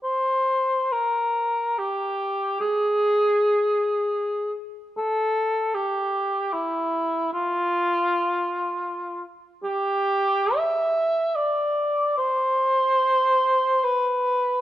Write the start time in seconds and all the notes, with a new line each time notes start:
0.04 C5
0.92 A#4
1.78 G4
2.60 G#4
4.98 A4
5.74 G4
6.53 E4
7.33 F4
9.64 G4
10.56 E5
11.36 D5
12.18 C5
13.84 B4